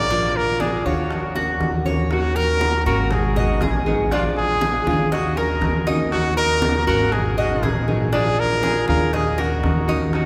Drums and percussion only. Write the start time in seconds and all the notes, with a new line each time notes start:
0.10 high bongo, high conga
0.35 high conga
0.60 high bongo, high conga
0.86 high bongo, high conga
1.11 high bongo, high conga
1.35 high bongo, high conga
1.60 high bongo, high conga
1.86 low bongo, high conga
2.11 high bongo, high conga
2.36 high conga
2.61 high bongo, high conga
2.86 high conga
3.11 high bongo, high conga, low conga
3.36 high conga, low conga
3.61 high bongo, low bongo, high conga
3.86 high conga
4.11 high bongo, high conga
4.36 high conga
4.61 high bongo, high conga
4.87 high bongo, high conga
5.12 high bongo, high conga
5.37 high bongo, high conga
5.61 high bongo, low bongo, high conga
5.87 high bongo, high conga
6.12 high bongo, high conga
6.38 high conga
6.62 high bongo, high conga
6.87 high conga
7.12 high bongo, high conga, low conga
7.38 high conga, low conga
7.63 high bongo, low bongo, high conga
7.88 high conga
8.13 high bongo, high conga
8.38 high conga
8.63 high bongo, high conga
8.88 high bongo, high conga
9.13 high bongo, high conga
9.38 high bongo, high conga
9.63 high bongo, low bongo, high conga
9.88 high bongo, high conga
10.13 high bongo, high conga